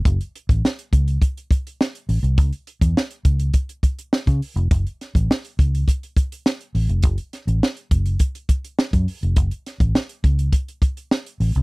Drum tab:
HH |xxxx-xxxxxxx-xox|xxxx-xxxxxxx-xox|xxxx-xxxxxxx-xox|xxxx-xxxxxxx-xox|
SD |----o-------o---|----o-------o---|--o-o-------o---|--o-o-------o---|
BD |o--o--o-o-o-----|o--o--o-o-o--o--|o--o--o-o-o-----|o-----o-o-o--o--|

HH |xxxx-xxxxxxx-xox|
SD |--o-o-------o---|
BD |o--o--o-o-o-----|